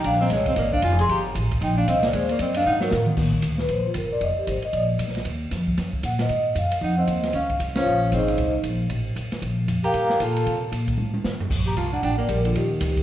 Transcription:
0.04 A#1 D4 F5, kick, ride
0.13 snare
0.20 C4 D#5, snare
0.30 C2 G#3 C#5, kick, snare, hi-hat pedal, ride
0.46 C4 D#5, kick, ride
0.56 G#1 A#3 D5, kick, snare, ride
0.72 D4 F5, kick
0.82 F1 F4 G#5, hi-hat pedal, ride
0.99 G#4 C6, ride
1.09 G1 G4 A#5, kick, ride
1.35 A1, kick, hi-hat pedal, ride
1.51 kick, ride
1.61 A#1 D#4 G5, kick, ride
1.77 D4 F5
1.87 C2 C4 D#5, kick, hi-hat pedal, ride
2.03 A#3 D5, snare, ride
2.13 D#2 G#3 C5, kick, ride
2.29 A#3 D5, ride
2.39 F#2 C4 D#5, kick, hi-hat pedal, ride
2.54 D4 F5, ride
2.66 G#2 D#4 F#5
2.81 F#3 A#4, snare
2.91 A2, snare, hi-hat pedal
3.06 mid tom
3.17 A#2, kick, snare, crash
3.33 muted upright bass stroke, kick
3.42 D2, kick, hi-hat pedal, ride
3.58 B4, snare
3.68 A#1 C5, kick, ride
3.85 F4, muted upright bass stroke
3.94 G1 A#4, kick, hi-hat pedal, ride
4.13 D5
4.21 F1 D#5, kick, ride
4.38 G4, muted upright bass stroke
4.47 G#1 C5, kick, hi-hat pedal, ride
4.62 D#5, muted upright bass stroke, ride
4.73 A#1 D5, kick, ride
4.99 B1, kick, hi-hat pedal, ride
5.08 snare
5.15 snare, ride
5.25 D#2, kick, ride
5.51 F2, kick, snare, hi-hat pedal, ride
5.67 kick
5.77 F#2, kick, snare, ride
5.93 kick
6.03 A#2 F#5, kick, hi-hat pedal, ride
6.19 D#5, snare, ride
6.29 G#2, kick, ride
6.55 F#2 F5, kick, hi-hat pedal, ride
6.71 ride
6.81 F2 D#4 F#5, kick
6.97 C4 D#5
7.07 D#2, kick, hi-hat pedal, ride
7.23 snare, ride
7.33 C#2 C#4 F5, kick, ride
7.49 kick, ride
7.60 C2, kick, hi-hat pedal, ride
7.75 C#4 F4 C5 C#5 F5, snare, ride
7.86 A#1
8.12 G#1 C4 D#4 G#4 C5 D#5, kick, hi-hat pedal, ride
8.28 ride
8.38 C2, kick, ride
8.63 A#1, kick, hi-hat pedal, ride
8.90 A1, kick, ride
9.16 B1, kick, hi-hat pedal, ride
9.32 muted upright bass stroke, snare, ride
9.42 A#1, kick, ride
9.68 F2, kick, hi-hat pedal, ride
9.84 G4 A#4 F5 G5 A#5, muted upright bass stroke, ride
9.94 G2, kick, ride
10.10 snare
10.20 A#2 F4 A4, kick, hi-hat pedal, ride
10.36 ride
10.46 C3, kick, ride
10.72 A#2, kick, hi-hat pedal, ride
10.88 kick, ride
10.98 A2, high tom
11.14 high tom
11.24 G2, snare, hi-hat pedal
11.40 floor tom
11.50 A#1, kick, crash
11.66 G4 A#5
11.76 C2 F4, kick, hi-hat pedal, ride
11.93 D4 F#5
12.03 A1 D4 G5, kick, ride
12.18 A#3 D5
12.28 A#1 G3 A#4, kick, hi-hat pedal, ride
12.45 D3 F4, ride
12.55 D#2 D#3 G4, kick, ride
12.81 C#2, kick, snare, hi-hat pedal, ride
12.97 kick, ride

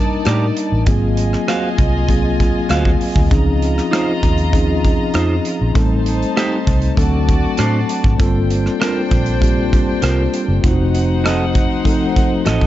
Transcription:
Already playing: G3 A#3 D4 D#4 A#4 D5 A5
0.25 A2 G4 A#4 D5, cross-stick, closed hi-hat
0.57 closed hi-hat
0.72 A1
0.86 G#1 F#3 A#3 C4 F4 G#4 D#5 G#5, kick, closed hi-hat
1.17 closed hi-hat
1.33 cross-stick
1.48 F#4 C5 F5, cross-stick, closed hi-hat
1.78 C2, kick, closed hi-hat
2.08 F#3 A#3 C4 F4 G#4, kick, closed hi-hat
2.40 kick, closed hi-hat
2.69 D2 F#4 C5 F5, cross-stick, closed hi-hat
2.85 kick
3.01 G#5, open hi-hat
3.16 D2, kick
3.31 C#2 E3 C4 C#4 D#4 F4 G#4 D#5 A#5, kick, closed hi-hat
3.37 F3
3.62 closed hi-hat
3.78 cross-stick, closed hi-hat
3.91 D#4 F4 C5, cross-stick, closed hi-hat
4.23 D#2, kick, closed hi-hat
4.38 closed hi-hat
4.53 F3 C4 C#4 D#4 G#4, kick, closed hi-hat
4.85 kick, closed hi-hat
5.14 F2 D#4 F4 C5, cross-stick, closed hi-hat
5.45 closed hi-hat
5.61 A#1
5.74 A1 G3 A3 C4 D#4 A4 C5 A5, kick, closed hi-hat
6.06 closed hi-hat
6.22 closed hi-hat
6.36 D#4 G4 C5, cross-stick, closed hi-hat
6.67 C2, kick, closed hi-hat
6.82 closed hi-hat
6.96 D2 F#3 A3 C4 D4 F#4 A4 D5 A5, kick, closed hi-hat
7.29 kick, closed hi-hat
7.57 A2 D4 F#4 C5, cross-stick, closed hi-hat
7.89 closed hi-hat
8.04 G#1, kick
8.18 G1 G3 A#3 C4 D4 F4 A4 C5 G5, kick, closed hi-hat
8.50 closed hi-hat
8.66 cross-stick
8.80 F4 A#4 C5, cross-stick, closed hi-hat
9.11 A#1, kick, closed hi-hat
9.26 closed hi-hat
9.41 G3 A#3 C4 F4 G4, kick, closed hi-hat
9.73 kick, closed hi-hat
10.02 C2 F4 A#4 C5, cross-stick, closed hi-hat
10.34 closed hi-hat
10.48 F#1
10.62 F1 F3 A3 C4 D#4 F4 C5 F#5, kick, closed hi-hat
10.71 F#4
10.95 closed hi-hat
11.24 F#4 A4 D#5, cross-stick, closed hi-hat
11.55 kick, closed hi-hat
11.84 F3 A3 C4 D#4 A4, kick, closed hi-hat
12.16 kick, closed hi-hat
12.45 A1 F#4 A4 D#5, cross-stick, closed hi-hat
12.61 kick

